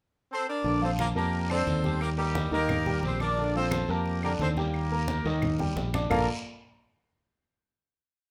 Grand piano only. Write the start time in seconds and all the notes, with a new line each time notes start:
0.64 D3 D4 D5
0.82 F3 F4 F5
1.15 A#3 A#4 A5
1.49 D3 D4 D5
1.84 G3 G4 G5
2.18 A#3 A#4 A#5
2.52 D#3 D#4 D#5
2.86 G3 G4 G5
3.21 D4 D5 D6
3.38 D3 D4 D5
3.55 F3 F4 F5
3.89 A#3 A#4 A5
4.24 D3 D4 D5
4.57 G3 G4 G5
4.92 A#3 A#4 A#5
5.26 D#3 D#4 D#5
5.59 G3 G4 G5
5.94 D4 D5 D6
6.10 A#3 F4 A4 A#4 D5 F5